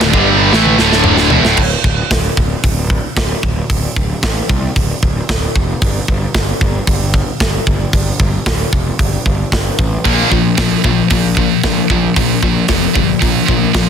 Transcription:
0.00 D1 D2 A2, snare, china
0.14 G1 G2 D3 G3, kick
0.53 A1 A2 E3 A3, snare
0.66 high tom
0.78 D1 D2 A2 D3, snare
0.92 snare
1.04 mid tom
1.18 snare
1.30 E1 E2 B2, floor tom
1.44 D1 D2 A2, snare
1.57 D1, kick, crash
1.84 D1, kick
2.11 D1, kick, snare, open hi-hat
2.37 D1, kick
2.64 D1, kick, open hi-hat
2.90 kick
3.17 D1, kick, snare, open hi-hat
3.43 D1, kick
3.70 D1, kick, open hi-hat
3.96 D1, kick
4.23 A1, kick, snare, open hi-hat
4.49 C2, kick
4.76 D1, kick, open hi-hat
5.03 D1, kick
5.29 D1, kick, snare, open hi-hat
5.56 F1, kick
5.82 G1, kick, open hi-hat
6.08 G1, kick
6.34 G1, kick, snare, open hi-hat
6.61 G1, kick
6.87 G1, kick, open hi-hat
7.14 kick
7.40 G1, kick, snare, open hi-hat
7.67 G1, kick
7.93 G1, kick, open hi-hat
8.20 G1, kick
8.46 D1, kick, snare, open hi-hat
8.72 F1, kick
8.99 G1, kick, open hi-hat
9.26 G1, kick
9.52 G1, kick, snare, open hi-hat
9.79 A1, kick
10.05 A#1 A#2 F3 A#3, kick, open hi-hat
10.32 A#1 A#2 F3, kick
10.58 A#1 A#2 F3, kick, snare, open hi-hat
10.84 A#1 A#2 F3, kick
11.10 A#1 A#2 F3, kick, open hi-hat
11.37 A#2 F3, kick
11.63 A#1 A#2 F3, kick, snare, open hi-hat
11.90 A#1 A#2 F3, kick
12.16 A#1 A#2 F3, kick, open hi-hat
12.43 A#1 A#2 F3, kick
12.68 F1 A#2 F3, kick, snare, open hi-hat
12.95 G1 A#2 F3, kick
13.22 A#1 A#2 F3, kick, open hi-hat
13.48 A#1 A#2 F3, kick
13.74 A#1 A#2 F3, kick, snare, open hi-hat

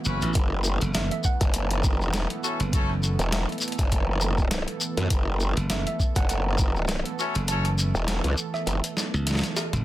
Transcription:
Already playing: E3 A3 B3 F#4
0.05 F#1 C#4 E4 F#4 B4, shekere
0.21 A1, closed hi-hat, shekere
0.34 F#1 A4, kick, closed hi-hat, shekere
0.64 shekere
0.81 F#1, closed hi-hat, shekere
0.94 F#1 E5, snare, closed hi-hat, shekere
1.11 E5, closed hi-hat
1.24 F#5, kick, shekere
1.41 F#1, kick, closed hi-hat, shekere
1.54 closed hi-hat, shekere
1.71 closed hi-hat
1.84 kick, cross-stick, shekere
2.01 F1, shekere
2.13 snare, closed hi-hat, shekere
2.30 closed hi-hat
2.44 C#4 E4 F#4 A4, shekere
2.60 F#1, closed hi-hat, shekere
2.73 C#4 E4 F#4 A4, kick, closed hi-hat, shekere
2.89 cross-stick
3.03 shekere
3.19 E1, closed hi-hat, shekere
3.32 E5, cross-stick, snare, closed hi-hat, shekere
3.49 closed hi-hat
3.52 closed hi-hat
3.58 closed hi-hat, shekere
3.62 closed hi-hat
3.68 closed hi-hat
3.72 closed hi-hat
3.78 F#1, kick, cross-stick, closed hi-hat, shekere
3.91 kick, closed hi-hat, shekere
4.21 shekere
4.38 kick, shekere
4.51 snare, closed hi-hat, shekere
4.68 closed hi-hat
4.81 shekere
4.97 F#2, closed hi-hat, shekere
5.10 F#1, kick, closed hi-hat, shekere
5.40 shekere
5.57 F#1, closed hi-hat, shekere
5.70 F#1 E5, snare, closed hi-hat, shekere
5.87 E5, closed hi-hat
6.00 kick, shekere
6.15 F#1 F#5, kick, closed hi-hat, shekere
6.29 F#5, closed hi-hat, shekere
6.58 kick, cross-stick, shekere
6.76 shekere
6.88 snare, closed hi-hat, shekere
7.05 closed hi-hat
7.18 C#4 E4 F#4 A4, shekere
7.35 F#1, closed hi-hat, shekere
7.48 C#4 E4 F#4 A4 A5, closed hi-hat, shekere
7.65 A5, cross-stick, closed hi-hat, shekere
7.78 shekere
7.95 E1, shekere
8.08 cross-stick, snare, closed hi-hat, shekere
8.24 C#2, closed hi-hat
8.38 shekere
8.54 E5, cross-stick, shekere
8.67 F#1 E5, closed hi-hat, shekere
8.84 closed hi-hat, shekere
8.97 snare, shekere
9.14 C#2, shekere
9.27 snare, closed hi-hat, shekere
9.31 snare
9.35 snare
9.39 snare
9.43 snare, closed hi-hat, shekere
9.57 snare, shekere
9.73 F#1, closed hi-hat, mid tom, shekere

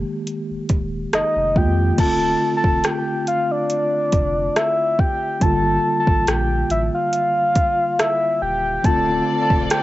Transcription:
Already playing: D#3 G#3 A#3 G4
0.27 closed hi-hat
0.50 D#1
0.69 D#1, kick, closed hi-hat
1.13 F1 D#5, cross-stick, closed hi-hat
1.36 F1
1.55 F2 D#3 G#3 A#3 F4 G5, kick
1.97 D1 D3 A3 C4 A5, kick, closed hi-hat, crash
2.02 F4
2.57 A5
2.64 E1, kick
2.84 G5, cross-stick, closed hi-hat
3.27 F5, closed hi-hat
3.51 D5
3.70 closed hi-hat
4.12 F1, kick, closed hi-hat
4.56 E5, cross-stick, closed hi-hat
4.99 G5, kick
5.40 G1 D3 G3 A#3 A5, kick, closed hi-hat
5.44 F4
6.00 A5
6.07 A1, kick
6.27 A#1 G5, cross-stick, closed hi-hat
6.70 A1 E5, closed hi-hat
6.95 F5
7.13 closed hi-hat
7.55 kick, closed hi-hat
7.99 E5, cross-stick, closed hi-hat
8.42 D#1 G5
8.83 D1 D3 A3 C4 F4 A4 D5 A5, kick, closed hi-hat
8.88 F4
9.42 A5
9.50 E1, kick
9.70 G5, cross-stick, closed hi-hat

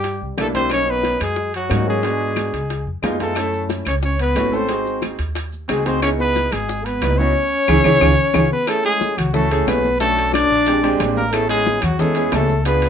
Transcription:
Already playing: G2 G3 G4
0.04 high bongo, high conga, high timbale
0.21 C2, high conga
0.37 B1 G3 A3 A#3 D4 E4 A4, high bongo, low bongo, high conga, high timbale, low timbale, claves
0.53 G3 A#3 C4 D4 E4 C5, high bongo, high conga, high timbale
0.70 F#3 A#3 C#4 D#4 C#5, high bongo, high conga, high timbale, claves
0.87 B3 B4, high bongo, high conga
1.03 high bongo, high conga, high timbale
1.20 F#2 G#3 G#4, high bongo, high conga, high timbale, claves
1.36 high bongo, high conga
1.54 F#3 F#4, high conga, high timbale
1.70 G#2 F#3 A#3 C#4 D#4, high bongo, low bongo, high conga, high timbale, low timbale, claves
1.86 F#3 G#3 A#3 C#4 F#4 G#4, high bongo
2.03 G#3 B3 D4 F#4, high bongo, high conga, high timbale
2.19 high bongo, high conga
2.36 high bongo, high conga, high timbale, claves
2.53 C#2, high bongo, high conga, high timbale
2.70 high bongo, high conga, high timbale
2.86 F2, high conga
3.02 F#2 G#3 B3 D#4 F4, high bongo, low bongo, high conga, high timbale, low timbale, claves
3.19 G#3 A3 B3 D#4 F4 A4, high bongo, high conga, high timbale
3.35 A3 C#4 E4 A4, high bongo, high conga, high timbale, claves, maracas
3.52 high bongo, high conga, maracas
3.69 high bongo, high conga, high timbale, maracas
3.85 C#2 C#4 C#5, high bongo, high conga, high timbale, claves, maracas
4.02 C#4 C#5, high bongo, high conga, maracas
4.19 B3 B4, high conga, high timbale, maracas
4.35 G#1 A3 C#4 E4 F#4, high bongo, low bongo, high conga, high timbale, low timbale, claves, maracas
4.52 A3 C4 C#4 E4 A4, high bongo, maracas
4.56 C5
4.68 C4 D#4 F#4 G#4, high bongo, high conga, high timbale, maracas
4.85 high bongo, high conga, maracas
5.02 high bongo, high conga, high timbale, claves, maracas
5.19 D#2, high bongo, high conga, high timbale, maracas
5.35 high bongo, high conga, high timbale, maracas
5.53 high conga, maracas
5.68 C#2 G#3 C4 D#4 F#4 G#4, high bongo, low bongo, high conga, high timbale, claves, maracas
5.85 C4 D#4 F#4 G#4 C5, high bongo, high conga, high timbale, maracas
6.02 B3 C#4 D#4 E4 G#4 C#5, high bongo, high conga, high timbale, claves, maracas
6.18 B3 B4, high bongo, high conga, maracas
6.35 high bongo, high conga, high timbale, maracas
6.51 G#1 G#3 G#4, high bongo, high conga, high timbale, claves, maracas
6.69 high bongo, high conga, maracas
6.85 B3 B4, high conga, high timbale, maracas
7.02 C#2 B3 D#4 E4 B4, high bongo, low bongo, high conga, high timbale, low timbale, claves, maracas
7.17 B3 C#4 D#4 E4 F#4 C#5, high bongo, high conga, maracas
7.68 C#2 C#4 E4 G#4, low bongo, low conga, high timbale, claves, maracas
7.84 C#4 E4 G#4, low bongo, low conga, high timbale, claves, maracas
8.01 C#2 C#4 F4 G#4, low bongo, low conga, high timbale, claves, maracas
8.34 C#2 C#4 F4 G#4, low bongo, low conga, high timbale, claves, maracas
8.51 B3 B4
8.66 A3 C#4 E4 G#4 A4, high bongo, high conga, high timbale, claves, maracas
8.85 G#3 G#4, high bongo, high conga, high timbale, maracas
9.01 high bongo, high conga, low timbale, maracas
9.17 C#2 F#3 F#4, high bongo, high conga, low conga, high timbale, claves, maracas
9.33 A3 C#4 E4 F#4 A4, high bongo, high conga, low conga, maracas
9.51 A3 C#4 E4 G#4, high bongo, high timbale
9.66 B1 B3 B4, high bongo, low bongo, high conga, high timbale, low timbale, claves, maracas
9.84 high conga, maracas
9.99 A3 C#4 D4 F#4 A4, high bongo, high conga, high timbale, maracas
10.17 high bongo, high conga, high timbale
10.32 D4 D5, high bongo, high conga, high timbale, low timbale, claves, maracas
10.50 A#1, high bongo, high conga, maracas
10.66 G#3 C4 D4 G4, high bongo, high conga, high timbale, maracas
10.83 G#3 C4 D4 G4, high bongo, high timbale
11.00 A1, high bongo, low bongo, high conga, high timbale, low timbale, claves, maracas
11.15 A#3 A#4, high conga, maracas
11.31 A3 B3 C#4 E4 G#4 A4, high bongo, high timbale, claves, maracas
11.49 G#3 G#4, high bongo, high conga, high timbale, maracas
11.66 high bongo, high conga, low timbale, maracas
11.82 E2 F#3 F#4, high bongo, high conga, low conga, high timbale, claves, maracas
11.98 G#3 B3 C#4 E4 G#4 A4, high bongo, high conga, low conga, maracas
12.15 B3 C#4 E4 G#4, high bongo, high timbale, maracas
12.31 C#2 A3 A4, high bongo, low bongo, high conga, high timbale, low timbale, claves, maracas
12.49 high conga, maracas
12.65 B3 D4 F4 G#4 B4, high bongo, high timbale, maracas
12.82 high bongo, high conga, high timbale

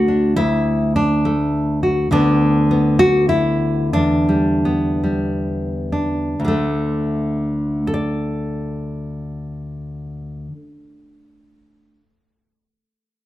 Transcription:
Already playing: D2 D3 A3 F#4
0.08 D4
0.36 D2 E4
0.96 D4
1.25 A3
1.83 F#4
2.11 D2 D3 B3 D4
2.71 B3
2.99 F#4
3.29 E4
3.93 E2 D4
4.29 G3
4.65 B3
5.04 G3
5.92 D4
6.40 D2
6.45 D3 A3
7.87 A4
7.94 D5

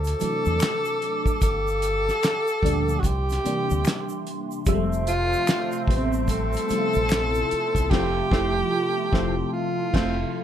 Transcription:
Already playing: D2 F#4 A4 C5 A5 D6
0.04 closed hi-hat, shaker
0.20 C3 E3 F#3 A3 D4, muted fingered electric bass stroke, closed hi-hat, shaker
0.45 E2, shaker
0.60 finger snap, snare, clap, closed hi-hat, shaker
0.85 shaker
1.02 closed hi-hat
1.26 kick, shaker
1.41 G1 G4 A4 F5 G5, kick, closed hi-hat, shaker
1.68 shaker
1.82 closed hi-hat, shaker
2.09 snare, shaker
2.23 finger snap, snare, clap, closed hi-hat, shaker
2.47 shaker
2.63 D2 A#2 F3 G3 A3 D4, kick, closed hi-hat
2.89 shaker
2.99 F#4 E5 C6, kick
3.04 C2 G4, closed hi-hat, shaker
3.30 snare, closed hi-hat, shaker
3.44 C3 E3 G3 A#3 D4, muted fingered electric bass stroke, closed hi-hat, shaker
3.70 D2, shaker
3.85 finger snap, snare, clap, closed hi-hat, shaker
4.09 shaker
4.27 closed hi-hat
4.51 shaker
4.66 F1 C3 F3 G3 G#3 A3 C4 A4 E5 A5, kick, closed hi-hat, shaker
4.74 A3
4.93 shaker
5.07 F4, closed hi-hat, shaker
5.33 shaker
5.47 finger snap, snare, clap, closed hi-hat, shaker
5.72 shaker
5.88 A1 C3 F3 G3 A3 B3, kick, closed hi-hat
5.97 C4
6.13 shaker
6.28 A4, kick, closed hi-hat, shaker
6.53 closed hi-hat, shaker
6.69 C3 F3 G3 A3 E4, muted fingered electric bass stroke, closed hi-hat, shaker
6.78 F4
6.94 A#1, shaker
7.09 finger snap, snare, clap, closed hi-hat, shaker
7.34 shaker
7.51 muted fingered electric bass stroke, closed hi-hat
7.75 C2, kick, closed hi-hat, shaker
7.90 F1 C3 F3 A3 C4 E4 G4, kick, snare, crash
7.99 F4
8.31 F1 C3 F3 A3 C4 E4, kick, snare
9.12 F1 C3 F3 A3 C4 E4, kick, snare
9.53 F4
9.93 F1 C3 F3 A3 C4 F4, kick, snare, crash

